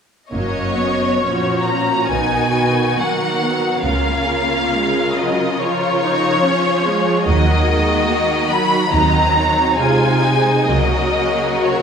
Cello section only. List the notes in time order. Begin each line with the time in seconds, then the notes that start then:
0.32 F#2
1.21 A#2
2.10 B2
2.98 D#3
3.85 C#3
6.44 F3
7.27 D#3
8.91 D#3
9.81 C3
10.69 C#3